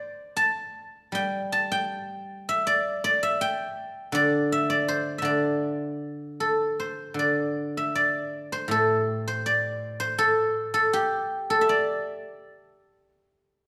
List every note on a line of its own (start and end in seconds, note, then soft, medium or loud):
0.00 1.42 C5 medium
0.00 1.45 D5 medium
0.37 1.52 A5 medium
1.12 3.39 G3 medium
1.12 1.71 G5 medium
1.52 2.97 A5 medium
1.72 3.27 G5 medium
2.49 3.22 E5 medium
2.67 3.04 D5 medium
3.04 4.14 D5 medium
3.23 4.52 E5 medium
3.41 4.97 G5 medium
4.12 5.21 D3 medium
4.12 4.69 D5 loud
4.52 5.18 E5 medium
4.70 5.24 D5 medium
4.88 6.79 C5 medium
5.18 7.13 D3 medium
5.18 6.90 E5 medium
5.25 7.09 D5 medium
6.40 8.60 A4 medium
6.80 8.52 C5 medium
7.14 9.44 D3 soft
7.19 7.95 D5 medium
7.77 9.49 E5 medium
7.95 9.46 D5 medium
8.52 9.27 C5 medium
8.68 10.91 A2 medium
8.68 9.05 A4 medium
9.05 10.18 G4 medium
9.28 9.99 C5 medium
9.46 11.31 D5 medium
10.00 11.98 C5 medium
10.18 10.73 A4 medium
10.74 11.50 A4 medium
10.93 13.29 G4 medium
11.50 13.67 A4 medium
11.61 13.33 E5 medium
11.69 13.67 D5 medium